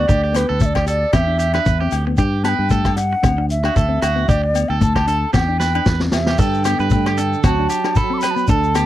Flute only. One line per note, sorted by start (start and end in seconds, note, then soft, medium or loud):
0.00 0.38 D5 loud
0.36 0.63 B4 medium
0.61 0.67 E5 medium
0.66 0.88 D5 medium
0.88 1.15 D5 medium
1.14 1.93 E5 medium
2.17 2.23 G5 medium
2.44 2.49 A5 medium
2.48 2.93 G5 medium
2.96 3.46 F#5 medium
3.51 4.30 E5 medium
4.28 4.70 D5 loud
4.68 4.81 G5 medium
4.82 5.31 A5 loud
5.35 5.86 G5 medium
6.13 6.40 E5 medium
6.39 6.91 G5 medium
6.92 7.41 G5 medium
7.45 7.98 A5 medium
7.97 8.15 B5 medium
8.14 8.19 D6 medium
8.18 8.32 B5 medium
8.31 8.36 A5 medium
8.35 8.49 B5 medium
8.49 8.86 A5 loud